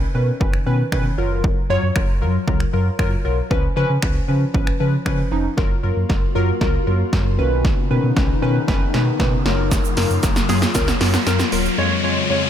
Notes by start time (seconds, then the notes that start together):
0.14 B2 D#3 C#4 B4
0.40 F#1 D#3 C#4 B4, kick
0.54 finger snap
0.66 B2 D#3 C#4 B4
0.92 B2 D#3 C#4 B4, finger snap, kick
1.18 F#1 F#3 F4 A#4
1.44 kick
1.70 F#2 F#3 F4 C#5
1.83 F#2
1.95 F#1 F#3 F4 A#4, finger snap, kick
2.21 F#2 F#3 F4 A#4
2.47 C#2 F#3 F4 A#4, kick
2.60 finger snap
2.73 F#2 F#3 F4 A#4
2.99 F#2 F#3 F4 A#4, finger snap, kick
3.25 B1 F#3 F4 A#4
3.50 C#2 F3 C#4 B4, kick
3.76 C#3 F3 C#4 B4
3.90 C#3
4.02 C#2 F3 C#4 B4, finger snap, kick
4.28 C#3 F3 C#4 B4
4.54 G#1 F3 C#4 B4, kick
4.67 finger snap
4.80 C#3 F3 C#4 B4
5.05 C#3 F3 C#4 B4, finger snap, kick
5.31 F1 F3 C#4 D#4
5.57 F#1 F#3 A#3 F4 F#4 A#4, kick, snare, riser
5.83 F#2 F#3 F4 A#4
5.96 F#2
6.09 F#1 F#3 F4 A#4, kick, snare
6.35 F#2 F#3 F4 A#4
6.61 C#2 F#3 F4 A#4, kick, snare
6.87 F#2 F#3 F4 A#4
7.13 F#2 F#3 F4 A#4, kick, snare
7.38 B1 C#3 D#3 B3 C#4 D#4 B4
7.65 kick, snare
7.90 B2 D#3 C#4 B4
8.03 B2
8.16 B1 D#3 C#4 B4, kick, snare
8.42 B2 D#3 C#4 B4
8.68 F#1 D#3 C#4 B4, kick, snare
8.93 B2 D#3 C#4 B4, snare
9.20 B2 D#3 C#4 B4, kick, snare
9.46 F#1 F#3 A#3 F4 A#4, snare
9.71 kick, snare, closed hi-hat, shaker
9.85 shaker
9.97 F#2 F#3 F4 A#4, snare, open hi-hat
10.10 F#2, shaker
10.23 F#1 F#3 F4 A#4, kick, snare, closed hi-hat, shaker
10.36 snare, shaker
10.49 F#2 F#3 F4 G#4, snare, open hi-hat, shaker
10.62 snare, shaker
10.75 C#2 F#3 F4 A#4, kick, snare, closed hi-hat, shaker
10.88 snare, shaker
11.01 F#2 F#3 F4 A#4, snare, open hi-hat
11.14 snare, shaker
11.26 F#2 F#3 F4 A#4, snare, closed hi-hat, shaker
11.39 snare, shaker
11.52 D#1 F#3 F4 A#4, open hi-hat, shaker
11.65 shaker
11.78 F2 C#3 G#3 F4 C#5
12.04 F2 G#3 F4 C#5
12.30 F2 G#3 F4 C#5